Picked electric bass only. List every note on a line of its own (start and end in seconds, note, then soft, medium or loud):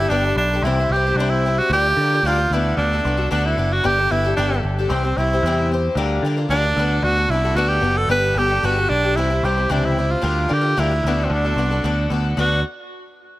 0.09 0.32 G1 medium
0.36 0.58 B1 loud
0.62 0.84 C2 loud
0.89 1.12 C2 medium
1.14 1.59 C2 medium
1.69 1.92 D2 loud
1.97 2.19 D3 loud
2.23 2.45 D2 medium
2.50 2.72 D2 medium
2.77 2.99 D2 loud
3.05 3.26 C2 loud
3.31 3.53 D2 medium
3.57 3.79 F#1 medium
3.84 4.06 G1 loud
4.10 4.32 G1 medium
4.37 4.59 G1 medium
4.63 4.85 G1 medium
4.89 5.12 C2 loud
5.17 5.39 C2 medium
5.43 5.87 E2 loud
5.95 6.18 D2 loud
6.22 6.45 D3 medium
6.49 6.71 D2 medium
6.76 6.99 D2 loud
7.02 7.25 D2 loud
7.28 7.51 C2 medium
7.54 7.78 D2 loud
7.81 8.04 F#1 medium
8.07 8.31 G1 loud
8.34 8.57 G1 medium
8.63 8.85 G1 medium
8.90 9.17 B1 medium
9.17 9.39 C2 loud
9.43 9.65 C2 loud
9.70 10.14 C#2 loud
10.23 10.45 D2 loud
10.51 10.73 D3 loud
10.77 10.99 D2 medium
11.04 11.26 D2 loud
11.30 11.52 D2 loud
11.56 11.79 C2 medium
11.84 12.06 D2 medium
12.10 12.32 D2 medium
12.37 12.62 D2 loud